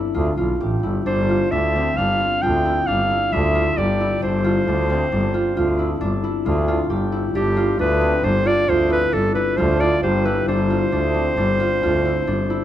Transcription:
Already playing: harp C4 D4 E4
0.14 double bass D2, harp F4
0.37 double bass B1, harp F4
0.60 double bass A1, harp G4
0.83 double bass G1, harp E4
1.06 double bass G1, harp D4, clarinet C5
1.29 harp F4
1.51 double bass D2, harp D4, clarinet E5
1.76 harp C4
1.97 double bass G1, harp D4, clarinet F5
2.20 harp F4
2.42 double bass D2, harp F4, clarinet G5
2.65 harp E4
2.87 double bass G1, harp D4, clarinet F5
3.10 harp E4
3.32 double bass D2, harp F4, clarinet E5
3.55 harp F4
3.77 double bass G1, harp G4, clarinet D5
4.01 harp E4
4.22 double bass G1, harp D4, clarinet C5
4.44 harp F4
4.67 double bass D2, harp D4
4.90 harp C4
5.12 double bass G1, harp D4
5.34 harp F4
5.57 double bass D2, harp F4
5.79 harp E4
6.01 double bass G1, harp D4
6.24 harp E4
6.46 double bass D2, harp F4
6.68 harp F4
6.90 double bass G1, harp G4
7.12 harp E4
7.35 double bass G1, harp D4, clarinet G4
7.57 harp F4
7.79 double bass D2, harp D4, clarinet B4
8.01 harp C4
8.23 double bass G1, harp D4, clarinet C5
8.46 harp F4, clarinet D5
8.68 double bass D2, harp F4, clarinet C5
8.90 harp E4, clarinet B4
9.12 double bass G1, harp D4, clarinet A4
9.35 harp E4, clarinet B4
9.57 double bass D2, harp F4, clarinet C5
9.80 harp F4, clarinet D5
10.03 double bass G1, harp G4, clarinet C5
10.25 harp E4, clarinet B4
10.47 double bass G1, harp D4, clarinet C5
10.70 harp F4
10.92 double bass D2, harp D4
11.14 harp C4
11.36 double bass G1, harp D4
11.60 harp F4
11.82 double bass D2, harp F4
12.05 harp E4
12.27 double bass G1, harp D4
12.50 harp E4

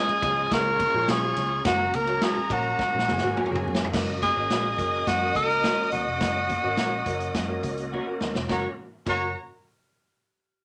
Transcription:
Already playing: tonewheel organ G#3 C#4 F4, tenor saxophone G#4, violin section D#5 D#6
0.09 muted picked electric bass stroke, ride, muted conga
0.22 picked electric bass C#2, grand piano F3 G#3 C#4 F4 G#4, kick, ride, high conga, low conga
0.51 picked electric bass C#2, tenor saxophone A#4, violin section C#5 C#6, kick, snare, ride, muted conga
0.67 muted conga
0.80 kick, ride, high conga
0.94 picked electric bass A#1, grand piano F3 G#3 C#4 F4 G#4
1.08 picked electric bass B1, clean electric guitar C#4 F4 G#4 C#5, tenor saxophone G#4, snare, ride, muted conga, high conga
1.22 grand piano F3 G#3 C#4 F4 G#4
1.36 picked electric bass C#2, snare, ride, high conga, low conga
1.64 picked electric bass F#1, grand piano F#3 A#3 C#4 F#4 A#4, tonewheel organ A#3 F#4, tenor saxophone F#4, violin section A#4 A#5, kick, snare, ride, low conga
1.81 muted conga
1.94 picked electric bass C#2, tenor saxophone A#4, ride, high conga
2.06 grand piano F#3 A#3 C#4 F#4 A#4, ride
2.21 clean electric guitar C#4 F#4 A#4 C#5, tenor saxophone G#4, snare, ride, muted conga
2.37 muted picked electric bass stroke, muted conga
2.49 picked electric bass A#1, grand piano F#3 A#3 C#4 F#4 A#4, kick, ride, high conga, low conga
2.53 tenor saxophone F#4
2.79 kick, snare
2.94 picked electric bass A#1, muted conga
2.99 snare
3.08 picked electric bass F#1, violin section G#4 G#5, snare, high conga
3.18 grand piano F#3 A#3, snare
3.22 picked electric bass G#1, grand piano C#4 F#4 A#4
3.36 clean electric guitar C#4 F#4 A#4 C#5, mid tom, muted conga, high conga
3.46 mid tom
3.50 picked electric bass F#1, grand piano F#3 A#3 C#4 F#4 A#4, muted conga
3.55 mid tom
3.65 picked electric bass F#2, high conga, low conga
3.75 snare
3.84 floor tom
3.91 picked electric bass F#1, grand piano A#3 C#4 F#4 A#4, tonewheel organ A#3 C#4 F#4, violin section D#5 D#6, kick, snare, crash, muted conga, low conga
4.22 tenor saxophone G#4, kick, closed hi-hat, high conga
4.35 picked electric bass G#1, grand piano A#3 C#4 F#4 A#4
4.50 picked electric bass A#1, clean electric guitar C#4 F#4 A#4 C#5, snare, closed hi-hat
4.66 muted conga
4.77 picked electric bass F#1, grand piano A#3 C#4 F#4 A#4, kick, closed hi-hat, low conga
5.07 picked electric bass F#2, tenor saxophone F#4, kick, snare, closed hi-hat, muted conga
5.20 grand piano A#3 C#4 F#4 A#4, muted conga
5.35 picked electric bass C#2, tenor saxophone A#4, kick, closed hi-hat, high conga
5.50 closed hi-hat
5.64 clean electric guitar C#4 F#4 A#4 C#5, snare, closed hi-hat, muted conga, high conga
5.76 grand piano A#3 C#4 F#4 A#4, muted conga
5.92 picked electric bass D#2, tenor saxophone F#4, snare, closed hi-hat, high conga, low conga
6.07 picked electric bass F1
6.19 picked electric bass F#1, grand piano A#3 C#4 F#4 A#4, kick, snare, closed hi-hat, muted conga, low conga
6.36 muted conga
6.50 kick, closed hi-hat, high conga
6.62 picked electric bass G#1, grand piano A#3 C#4 F#4 A#4
6.77 picked electric bass A#1, clean electric guitar C#4 F#4 A#4 C#5, snare, closed hi-hat
7.06 picked electric bass F#1, grand piano A#3 C#4 F#4 A#4, kick, closed hi-hat, low conga
7.20 closed hi-hat
7.34 picked electric bass F#2, kick, snare, closed hi-hat
7.47 grand piano A#3 C#4 F#4 A#4, muted conga
7.63 picked electric bass C#2, kick, closed hi-hat, high conga
7.77 closed hi-hat
7.92 clean electric guitar C#4 F#4 A#4 C#5, grand piano F#5, muted conga, high conga
8.06 grand piano A#3 C#4 F#4 A#4
8.21 picked electric bass D#2, grand piano D#5, snare, high conga, low conga
8.35 picked electric bass F1, snare
8.49 picked electric bass F#1, tonewheel organ A#3 C#4 F#4, grand piano A#3 C#4 F#4 A#4, clean electric guitar C#4 F#4 A#4 C#5, violin section F#4 C#5 A#5, tenor saxophone F#4, kick, snare, high conga
9.06 picked electric bass F#1, grand piano A#3 C#4 F#4 A#4, clean electric guitar C#4 F#4 A#4 C#5, violin section F#4 C#5 A#5, tenor saxophone F#4, kick, crash, high conga

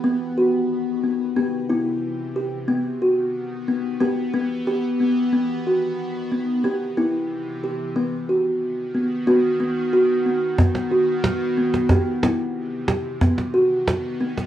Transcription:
Already playing: ambient pad B3
0.04 kalimba B3
0.38 kalimba F#4
1.04 kalimba B3
1.36 kalimba B3 G4
1.69 kalimba B3 E4
2.36 kalimba G4
2.68 kalimba B3, ambient pad B3
3.02 kalimba F#4
3.68 kalimba B3
4.00 kalimba B3 G4
4.34 kalimba B3
4.67 kalimba G4
5.00 kalimba B3
5.32 kalimba B3
5.67 kalimba F#4
6.31 kalimba B3
6.64 kalimba B3 G4
6.97 kalimba B3 E4
7.64 kalimba G4
7.96 ambient pad D#3 B3 F#4, kalimba B3
8.29 kalimba F#4
8.95 kalimba B3
9.27 kalimba B3 F#4
9.60 kalimba B3
9.93 kalimba F#4
10.26 kalimba B3
10.59 kalimba B3, cajon bass, cajon slap
10.75 cajon slap
10.91 kalimba F#4, cajon slap
11.24 cajon slap
11.58 kalimba B3
11.74 cajon slap
11.89 kalimba B3 G4, cajon bass, cajon slap
12.07 cajon slap
12.23 kalimba B3 E4, cajon slap
12.88 kalimba G4, cajon slap
13.20 ambient pad B3, kalimba B3, cajon bass, cajon slap
13.38 cajon slap
13.54 kalimba F#4, cajon slap
13.87 cajon slap
14.20 kalimba B3
14.37 cajon slap

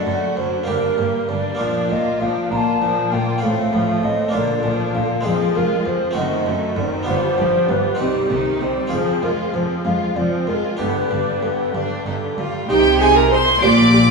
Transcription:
Already playing: harpsichord A3 D4 A4, recorder D5
0.06 double bass section F#1, cello section F#2, harpsichord F#2, viola section A3, violin section F#4 A4
0.36 double bass section F#1, cello section F#2, harpsichord F#2, viola section F#3, violin section D4 F#4, recorder C5
0.64 harpsichord A#3 D4 G4, violin section A#4
0.68 double bass section G1, cello section G2, harpsichord G2, viola section G3, violin section D4, recorder A#4
0.98 double bass section G1, harpsichord G2, cello section G2, viola section A#3, violin section A#3 G4
1.29 double bass section G1, cello section G2, harpsichord G2, viola section G3, violin section D4 A#4, recorder D5
1.55 harpsichord A#3 D4 F4
1.59 double bass section A#1, harpsichord A#2, cello section A#2, viola section F3, violin section D4 A#4, recorder D5
1.90 double bass section A#1, cello section A#2, harpsichord A#2, viola section A#3, violin section F4, recorder D#5
2.20 double bass section A#1, cello section A#2, harpsichord A#2, viola section F3, violin section D4 A#4, recorder F5
2.51 double bass section A#1, cello section A#2, harpsichord A#2, viola section A#3, violin section F4, recorder A#5
2.56 recorder A5
2.81 double bass section A#1, cello section A#2, harpsichord A#2, viola section F3, violin section D4 A#4
3.12 double bass section A#1, harpsichord A#2, cello section A#2, viola section A#3, violin section F4, recorder G5
3.38 harpsichord C4 F4
3.43 double bass section A1, harpsichord A2, cello section A2, viola section A3, violin section C4 A4, recorder F5
3.73 double bass section A1, harpsichord A2, cello section A2, viola section F3, violin section A3 F4
4.03 double bass section A1, harpsichord A2, cello section A2, viola section A3, violin section C4 A4, recorder D#5
4.29 harpsichord A#3 D4 F4
4.33 double bass section A#1, harpsichord A#2, cello section A#2, viola section D3, violin section A#3 D4, recorder D5
4.63 double bass section A#1, harpsichord A#2, cello section A#2, viola section F3, violin section D4 F4
4.94 double bass section A#1, cello section A#2, harpsichord A#2, viola section D3, violin section A#3 D4, recorder F5
5.21 harpsichord G#3 C4 G#4
5.25 double bass section F1, harpsichord F2, cello section F2, viola section F3, violin section C4 G#4, recorder G#4
5.55 double bass section F1, harpsichord F2, cello section F2, viola section G#3, violin section F4, recorder A#4
5.85 double bass section F1, harpsichord F2, cello section F2, viola section F3, violin section C4 G#4, recorder C5
6.11 harpsichord A3 C4 F#4
6.15 double bass section F#1, harpsichord F#2, cello section F#2, viola section D#3, violin section C4 F#4, recorder D#5
6.46 double bass section F#1, harpsichord F#2, cello section F#2, viola section F#3, violin section A3 A4
6.76 double bass section F#1, harpsichord F#2, cello section F#2, viola section D#3, violin section C4 F#4, recorder D5
7.03 viola section G3, harpsichord B3 D4 F4
7.07 double bass section G1, harpsichord G2, cello section G2, violin section B3 F4, recorder C5
7.38 double bass section G1, harpsichord G2, cello section G2, viola section F3, violin section D4 G4
7.69 double bass section G1, harpsichord G2, cello section G2, viola section G3, violin section B3 F4, recorder B4
7.95 harpsichord C4 D#4
7.99 double bass section C2, harpsichord C3, cello section C3, viola section G3, violin section C4 D#4, recorder G4
8.30 double bass section C2, harpsichord C3, cello section C3, viola section D#3, violin section D#4 G4
8.60 double bass section C2, harpsichord C3, cello section C3, viola section G3, violin section C4 D#4, recorder C5
8.87 double bass section F1, harpsichord C4 F4 G#4
8.92 harpsichord F2, cello section F2, viola section F3, violin section C4 G#4, recorder G#4
9.23 double bass section F1, harpsichord F2, cello section F2, viola section G#3, violin section F4, recorder A#4
9.54 double bass section F1, harpsichord F2, cello section F2, viola section F3, violin section C4 G#4, recorder C5
9.85 double bass section F1, harpsichord F2, cello section F2, viola section G#3, violin section F4, recorder F5
10.16 double bass section F1, harpsichord F2, cello section F2, viola section F3, violin section C4 G#4, recorder D5
10.32 recorder C5
10.47 double bass section F1, harpsichord F2, cello section F2, viola section G#3, violin section F4, recorder A#4
10.77 double bass section G1, harpsichord G2 D4 G4, cello section G2, viola section D3, violin section B3 G4, recorder B4
11.10 double bass section G1, harpsichord G2, cello section G2, viola section G3, violin section D4
11.42 double bass section G1, cello section G2, harpsichord G2, viola section D3, violin section B3 G4
11.74 double bass section G1, cello section G2, harpsichord G2, viola section G3, violin section D4
12.06 double bass section G1, cello section G2, harpsichord G2, viola section D3, violin section D#4 G4
12.37 double bass section G1, cello section G2, harpsichord G2, viola section G3, violin section D4 F4
12.68 double bass section C2, cello section C3, harpsichord C3 D#4 G4, viola section D#4, recorder G4, violin section G4 G5
13.00 viola section D#4, violin section G#4 G#5, recorder G#4
13.15 violin section A#4 A#5, recorder A#4
13.31 viola section D#4, violin section C5 C6, recorder C5
13.61 double bass section A#1, harpsichord A#2 D4 G4, cello section A#2, viola section G4, violin section D5 D6, recorder D5
13.93 viola section G4

